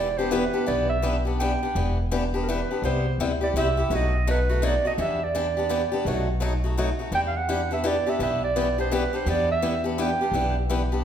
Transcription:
Already playing: upright bass E1, clarinet D5
0.18 steel-string acoustic guitar B3 D4 G4, clarinet C5
0.31 steel-string acoustic guitar E3 B3 D4 G4, clarinet B4
0.54 steel-string acoustic guitar B3 D4 G4
0.67 upright bass B1, steel-string acoustic guitar E3 B3 D4 G4, clarinet D5
0.89 clarinet E5
1.02 steel-string acoustic guitar E3 B3 D4 G4
1.25 steel-string acoustic guitar B3 D4 G4
1.39 steel-string acoustic guitar E3 B3 D4 G4, clarinet G5
1.63 steel-string acoustic guitar B3 D4 G4
1.75 upright bass E1, steel-string acoustic guitar E3 B3 D4 G4
2.11 steel-string acoustic guitar E3 B3 D4 G4
2.34 steel-string acoustic guitar B3 D4 G4
2.43 clarinet A#4
2.49 steel-string acoustic guitar E3 B3 D4 G4, clarinet B4
2.71 steel-string acoustic guitar B3 D4 G4
2.82 upright bass C2, steel-string acoustic guitar C3 G3 B3 E4 G4, clarinet C5
3.18 upright bass D2, steel-string acoustic guitar C3 G3 B3 E4 G4
3.41 steel-string acoustic guitar B3 E4 G4, clarinet D5
3.54 upright bass C2, steel-string acoustic guitar C3 G3 B3 E4 G4
3.58 clarinet E5
3.77 steel-string acoustic guitar B3 E4 G4
3.90 upright bass B1, steel-string acoustic guitar B2 F#3 A3 D#4 F#4
3.95 clarinet D#5
4.27 steel-string acoustic guitar B2 F#3 A3 D#4 F#4, clarinet B4
4.49 steel-string acoustic guitar A3 D#4 F#4
4.62 steel-string acoustic guitar B2 F#3 A3 D#4 F#4, clarinet D5
4.85 steel-string acoustic guitar A3 D#4 F#4, clarinet D#5
4.98 upright bass E2, steel-string acoustic guitar E3 B3 D4 G4, clarinet E5
5.24 clarinet D5
5.35 steel-string acoustic guitar E3 B3 D4 G4
5.57 steel-string acoustic guitar B3 D4 G4
5.69 steel-string acoustic guitar E3 B3 D4 G4
5.92 steel-string acoustic guitar B3 D4 G4
6.05 upright bass B1, steel-string acoustic guitar B2 F#3 A3 D#4 F#4
6.40 steel-string acoustic guitar B2 F#3 A3 D#4 F#4
6.64 steel-string acoustic guitar A3 D#4 F#4
6.78 steel-string acoustic guitar B2 F#3 A3 D#4 F#4
6.99 steel-string acoustic guitar A3 D#4 F#4
7.12 upright bass E2, steel-string acoustic guitar E3 B3 D4 G4, clarinet G5
7.28 clarinet F5
7.37 clarinet F#5
7.49 steel-string acoustic guitar E3 B3 D4 G4
7.71 steel-string acoustic guitar B3 D4 G4, clarinet E5
7.84 steel-string acoustic guitar E3 B3 D4 G4, clarinet D5
8.07 steel-string acoustic guitar B3 D4 G4, clarinet E5
8.19 upright bass B1, steel-string acoustic guitar E3 B3 D4 G4, clarinet E5
8.44 clarinet D5
8.56 steel-string acoustic guitar E3 B3 D4 G4
8.78 steel-string acoustic guitar B3 D4 G4, clarinet C5
8.92 steel-string acoustic guitar E3 B3 D4 G4, clarinet B4
9.13 steel-string acoustic guitar B3 D4 G4, clarinet C5
9.26 upright bass E2, steel-string acoustic guitar E3 B3 D4 G4, clarinet D5
9.51 clarinet E5
9.62 steel-string acoustic guitar E3 B3 D4 G4
9.84 steel-string acoustic guitar B3 D4 G4
9.98 steel-string acoustic guitar E3 B3 D4 G4, clarinet G5
10.21 steel-string acoustic guitar B3 D4 G4
10.32 upright bass B1, steel-string acoustic guitar E3 B3 D4 G4
10.70 steel-string acoustic guitar E3 B3 D4 G4
10.92 steel-string acoustic guitar B3 D4 G4

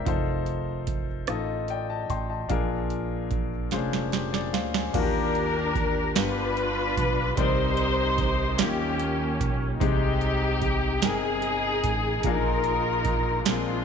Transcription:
Already playing: grand piano A#4 E5
0.05 upright bass F1, grand piano D#4 F4 A4 C5, kick, closed hi-hat
0.46 closed hi-hat
0.87 kick, closed hi-hat
1.27 upright bass A1, grand piano D#4 F4 A4 D#5, cross-stick, closed hi-hat
1.68 grand piano D5 G5, closed hi-hat
1.90 grand piano D#5 A5
2.09 upright bass A1, grand piano G5 C6, kick, closed hi-hat
2.30 grand piano D#5 A5
2.49 upright bass A#1, grand piano A#2 D4 F4 G#4 A#4, kick, closed hi-hat
2.90 closed hi-hat
3.31 kick, closed hi-hat
3.71 upright bass F1, grand piano C#4 F4 G#4 C5, snare, closed hi-hat
3.78 grand piano D4
3.93 snare
4.12 grand piano G4 C5, snare, closed hi-hat
4.33 grand piano G#4 D5, snare
4.53 upright bass D2, grand piano C5 F5, snare, closed hi-hat
4.74 grand piano D5 G#5, snare
4.94 upright bass D#2, grand piano D#3 A#3 D4 F4 F#4, string section D4 G4 A#4, kick, closed hi-hat, crash
5.02 grand piano G4
5.35 closed hi-hat
5.75 kick, closed hi-hat
6.15 upright bass G1, grand piano G2 B3 D4 F4 G4, string section D4 F4 B4, snare, closed hi-hat
6.57 closed hi-hat
6.97 upright bass B1, kick, closed hi-hat
7.37 upright bass C2, grand piano C3 C4 D#4 A#4 D5, string section D#4 G4 C5, kick, closed hi-hat
7.77 closed hi-hat
8.18 kick, closed hi-hat
8.58 upright bass D#2, grand piano D#3 C#4 D#4 F4 G4, string section A#3 C#4 G4, snare, closed hi-hat
8.99 closed hi-hat
9.40 upright bass B1, kick, closed hi-hat
9.80 upright bass C2, grand piano C3 G#3 C4 D#4 G4, string section D#4 G4, kick, closed hi-hat
10.21 closed hi-hat
10.61 kick, closed hi-hat
11.02 upright bass G1, grand piano C4 D#4 A#4 G5, string section D#4 G#4, snare, closed hi-hat
11.42 closed hi-hat
11.84 upright bass A1, kick, closed hi-hat
12.23 upright bass A#1, grand piano A#2 A#3 D4 F4 G#4, string section D#4 F4 A#4, kick, closed hi-hat
12.32 grand piano D#4
12.64 closed hi-hat
13.05 kick, closed hi-hat
13.45 upright bass A#1, grand piano A#2 C4 D4 G#4 A#4, string section G#3 D4 F4, snare, closed hi-hat

